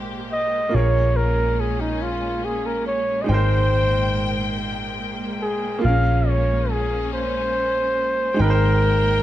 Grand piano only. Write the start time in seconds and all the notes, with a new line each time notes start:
Already playing: G#3 D#4 G4 A#4 C5
0.69 A#3 F4
0.74 G#4 A#4
0.79 C#5
3.24 G#3 D#4
3.29 A#4 G5
3.34 C5
5.79 A#3 F4
5.84 G#4 A#4
5.88 C#4
8.34 G#3 D#4
8.39 A#4 G5
8.44 B4
8.50 C5